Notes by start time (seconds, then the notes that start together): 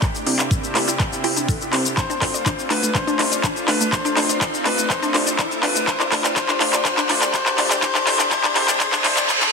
Already playing: D4 G4, riser
0.02 C3 C4 E4, kick, clap, closed hi-hat, shaker
0.15 closed hi-hat, shaker
0.27 C2 C4 E4 G4 D5, open hi-hat
0.39 clap, closed hi-hat, shaker
0.51 kick, closed hi-hat, shaker
0.63 closed hi-hat, shaker
0.75 C2 A3 C4 E4 G4 D5, clap, open hi-hat
0.88 E4, closed hi-hat, shaker
1.00 D5, kick, clap, closed hi-hat, shaker
1.12 closed hi-hat, shaker
1.24 G1 C4 E4 G4 G5, open hi-hat
1.36 D4, closed hi-hat, shaker
1.48 A4, kick, open hi-hat, shaker
1.61 closed hi-hat, shaker
1.73 C2 C4 E4 G4 C5, clap, open hi-hat
1.85 closed hi-hat, shaker
1.97 A3 D4 F4 C5, kick, clap, closed hi-hat, shaker
2.10 D4, closed hi-hat, shaker
2.22 D2 A3 D4 F4 D5, kick, clap, open hi-hat
2.34 D5, closed hi-hat, shaker
2.46 D4, kick, clap, closed hi-hat, shaker
2.59 closed hi-hat, shaker
2.70 D2 A3 D4 F4 B4 D5, clap, open hi-hat
2.83 A3, closed hi-hat, shaker
2.95 D4 C5, kick, clap, closed hi-hat, shaker
3.07 D4, closed hi-hat, shaker
3.19 C2 A3 D4 F4 D5, clap, open hi-hat
3.32 D5, closed hi-hat, shaker
3.44 D4, kick, clap, closed hi-hat, shaker
3.56 closed hi-hat, shaker
3.68 D2 A3 D4 F4 B4 D5, clap, open hi-hat
3.80 A3, closed hi-hat, shaker
3.92 C4 D4 C5, kick, clap, closed hi-hat, shaker
4.05 D4, closed hi-hat, shaker
4.17 F1 A3 D4 F4 D5, clap, open hi-hat
4.29 D5, closed hi-hat, shaker
4.41 D4, kick, clap, closed hi-hat, shaker
4.54 closed hi-hat, shaker
4.66 F1 A3 D4 F4 B4 D5, clap, open hi-hat
4.78 A3, closed hi-hat, shaker
4.90 D4 C5, kick, clap, closed hi-hat, shaker
5.02 D4, closed hi-hat, shaker
5.14 C2 A3 D4 F4 D5, clap, open hi-hat
5.27 D5, closed hi-hat, shaker
5.39 D4, kick, clap, closed hi-hat, shaker
5.51 closed hi-hat, shaker
5.63 F1 A3 D4 F4 B4 D5, clap, open hi-hat
5.75 A3, closed hi-hat, shaker
5.87 D4 G4 C5, kick, clap, closed hi-hat, shaker
6.00 D4, clap, closed hi-hat, shaker
6.12 G1 A3 D4 F4 D5, kick, clap, open hi-hat
6.24 D5, clap, closed hi-hat, shaker
6.36 D4 C5, kick, clap, closed hi-hat, shaker
6.49 D4, clap, closed hi-hat, shaker
6.61 G1 A3 D4 F4 D5, clap, open hi-hat
6.73 D5, clap, closed hi-hat, shaker
6.85 D4 C5, kick, clap, closed hi-hat, shaker
6.97 D4, clap, closed hi-hat, shaker
7.09 F1 A3 D4 F4 D5, clap, open hi-hat
7.22 D5, clap, closed hi-hat, shaker
7.34 D4 C5, kick, clap, closed hi-hat, shaker
7.46 D4, clap, closed hi-hat, shaker
7.58 G1 A3 D4 F4 D5, clap, open hi-hat
7.71 D5, clap, closed hi-hat, shaker
7.82 C3 A3 C4 D4 E4 C5 D5, kick, clap, closed hi-hat, shaker
7.95 D4, clap, closed hi-hat, shaker
8.07 C2 A3 D4 E4 C5 D5, clap, open hi-hat
8.19 D4, clap, closed hi-hat, shaker
8.31 A3 D4 E4 C5 D5, kick, clap, closed hi-hat, shaker
8.44 D4, clap, closed hi-hat, shaker
8.56 C2 A3 D4 E4 C5 D5, clap, open hi-hat
8.68 D4, clap, closed hi-hat, shaker
8.80 A3 D4 E4 C5 D5, kick, clap, closed hi-hat, reverse cymbal, shaker
8.93 D4, clap, closed hi-hat, shaker
9.04 G1 A3 D4 E4 C5 D5, clap, open hi-hat
9.17 D4, clap, closed hi-hat, shaker
9.29 A3 D4 E4 C5 D5, kick, clap, closed hi-hat, shaker
9.41 D4, clap, closed hi-hat, shaker